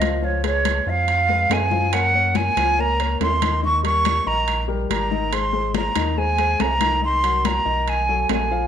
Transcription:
Already playing: C#2 D#5
0.00 F3 F4 F5, high conga, high timbale
0.22 F3 F4 C#5 F5, high conga
0.43 G#3 G#4 B4 C#5, high conga, high timbale
0.65 high conga, high timbale
0.86 F2 F3 F4 F5, high conga
1.08 high conga, high timbale
1.29 G#3 G#4 B4, high conga
1.49 F#2 G#3 G#4 B4 G#5, high conga, high timbale, low timbale
1.71 F3 F4 F5, high conga
1.93 A#3 A#4 C#5 F#5, high conga, high timbale
2.14 A#3 A#4 C#5, high conga
2.35 G#5, high conga, high timbale
2.56 C#2 F3 F4 F5, high conga, high timbale
2.78 A#3 A#4 C#5 A#5, high conga
2.99 A#3 A#4 C#5, high conga, high timbale
3.20 D#2 C6, high conga, high timbale, low timbale
3.42 D#3 D#4 D#5, high conga, high timbale
3.63 D#3 D#4 D#5 C#6, high conga
3.83 G3 G4 A#4 C#6, high conga, high timbale
4.05 high conga, high timbale
4.26 A#1 D#3 D#4 D#5 A#5, high conga
4.48 high conga, high timbale
4.68 G3 G4 A#4, high conga
4.89 G#1 G3 G4 A#4 A#5, high conga, high timbale
5.11 D#3 D#4 D#5, high conga
5.32 G#3 G#4 C5 C6, high conga, high timbale
5.53 G#3 G#4 C5, high conga
5.75 A#5, high conga, high timbale
5.95 D#2 D#3 D#4 D#5, high conga, high timbale
6.17 G#3 G#4 C5 G#5, high conga
6.38 G#3 G#4 C5, high conga, high timbale
6.60 C2 A#5, high conga, high timbale, low timbale
6.81 D#3 D#4 D#5, high conga, high timbale
7.02 D#3 D#4 D#5 C6, high conga
7.23 F#3 F#4 A#4, high conga, high timbale
7.45 A#5, high conga, high timbale
7.65 B1 D#3 D#4 D#5, high conga
7.88 G#5, high conga, high timbale
8.09 F#3 F#4 A4, high conga
8.29 A#1 F#3 F#4 A4 G#5, high conga, high timbale, low timbale
8.51 F3 F4 F5

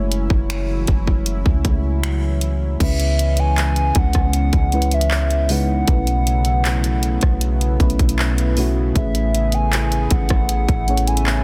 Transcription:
Already playing: F#1 C#3 E3 F#3 G#3 A3 C#4 E4 C#5
0.12 closed hi-hat
0.30 F#1, kick
0.50 finger snap, closed hi-hat
0.87 F#1, kick, closed hi-hat
1.07 kick
1.26 closed hi-hat
1.46 C#2, kick
1.65 G#3 A3 E4, kick, closed hi-hat
2.03 finger snap, closed hi-hat
2.41 closed hi-hat
2.80 C#2 C#3 E3 G#3 B3 C#4 E4 B4 E5, kick, closed hi-hat, crash
3.00 closed hi-hat
3.19 closed hi-hat
3.37 G#5, closed hi-hat
3.58 clap, closed hi-hat
3.76 closed hi-hat
3.95 C#2 F#5, kick, closed hi-hat
4.13 C#2, kick, cross-stick, closed hi-hat
4.33 closed hi-hat
4.53 C#2, kick, closed hi-hat
4.72 C#3 G#3 C#4 E4 B4, closed hi-hat
4.82 closed hi-hat
4.91 E5, closed hi-hat
5.01 closed hi-hat
5.11 clap
5.31 closed hi-hat
5.49 C#3 G#3 D#4 E4 B4 F#5, open hi-hat
5.88 B1 B2 F#3 A3 C#4 E4 B4, kick, closed hi-hat
6.07 closed hi-hat
6.27 closed hi-hat
6.45 closed hi-hat
6.65 clap, closed hi-hat
6.84 closed hi-hat
7.03 closed hi-hat
7.21 B1, kick, cross-stick, closed hi-hat
7.41 closed hi-hat
7.61 closed hi-hat
7.80 B1 B2 A3 C#4 E4 B4, kick, closed hi-hat
7.90 closed hi-hat
7.99 B1, kick, closed hi-hat
8.09 closed hi-hat
8.19 clap
8.38 closed hi-hat
8.57 B2 A3 C#4 E4 F#4, open hi-hat
8.95 A1 A2 A3 C#4 G#4 B4 E5, kick, closed hi-hat
9.15 closed hi-hat
9.35 closed hi-hat
9.52 G#5, closed hi-hat
9.73 clap, closed hi-hat
9.92 closed hi-hat
10.11 A1 F#5, kick, closed hi-hat
10.29 kick, cross-stick, closed hi-hat
10.49 closed hi-hat
10.69 A1, kick, closed hi-hat
10.88 A2 A3 C#4 G#4 C#5, closed hi-hat
10.97 closed hi-hat
11.07 G#5, closed hi-hat
11.17 closed hi-hat
11.26 clap

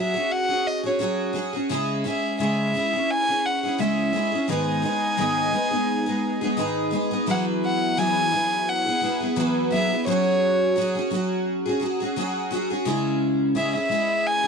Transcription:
Already playing: F#3 C#4 F#4 G#4 E5
0.14 C#4 F#4 G#4
0.32 F#5
0.48 C#4 F#4 G#4
0.67 D#5
0.84 C#4 F#4 G#4 C#5
0.99 F#3 C#4 F#4 G#4
1.33 F#3 C#4 F#4 G#4
1.53 C#4 F#4 G#4
1.69 C#3 G#3 C#4 E4 G#4
2.04 G#3 C#4 E4 G#4 E5
2.39 C#3 G#3 C#4 E4 G#4 E5
2.74 G#3 C#4 E4 G#4
2.93 C#4 E4 G#4
3.11 G#5
3.28 C#4 E4 G#4
3.45 F#5
3.63 C#4 E4 G#4
3.78 C#3 G#3 C#4 E4 G#4 E5
4.13 G#3 C#4 E4 G#4
4.32 C#4 E4 G#4
4.48 G#2 D#3 G#3 B3 D#4 G#4 G#5
4.82 G#3 B3 D#4 G#4
5.17 G#2 D#3 G#3 B3 D#4 G#4
5.52 G#3 B3 D#4 G#4
5.71 G#3 B3 D#4 G#4
6.06 G#3 B3 D#4 G#4
6.41 G#3 B3 D#4 G#4
6.57 G#2 D#3 G#3 B3 D#4 G#4
6.91 G#3 B3 D#4 G#4
7.11 G#3 B3 D#4 G#4
7.26 E3 F#3 B3 E4 G#4 F#5
7.65 F#5
7.97 E3 F#3 B3 E4 G#4 G#5
8.31 F#3 B3 E4 G#4
8.69 F#5
8.86 B3 E4 G#4
9.01 F#3 B3 E4 G#4
9.20 B3 E4 G#4
9.36 E3 F#3 B3 E4 G#4
9.70 F#3 B3 E4 G#4 E5
9.90 B3 E4 G#4
10.06 F#3 C#4 F#4 G#4 C#5
10.76 F#3 C#4 F#4 G#4
10.95 C#4 F#4 G#4
11.10 F#3 C#4 F#4 G#4
11.66 C#4 F#4 G#4
11.80 F#3 C#4 F#4 G#4
12.00 C#4 F#4 G#4
12.16 F#3 C#4 F#4 G#4
12.51 F#3 C#4 F#4 G#4
12.70 C#4 F#4 G#4
12.85 C#3 G#3 C#4 E4 G#4
13.55 C#3 G#3 C#4 E4 G#4 E5
13.75 C#4 E4 G#4 E5
13.89 G#3 C#4 E4 G#4
14.27 G#5
14.43 G#4

